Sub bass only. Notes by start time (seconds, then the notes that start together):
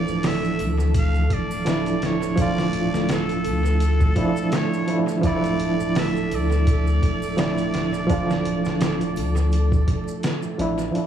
0.08 D1
0.59 D2
1.30 D1
2.01 D1
2.38 D1
2.73 D1
2.94 D1
3.45 D2
5.24 D1
5.59 D1
5.80 D1
6.31 D2
7.03 D1
7.74 D1
8.10 D1
8.45 D1
8.65 D1
9.16 D2
10.58 A1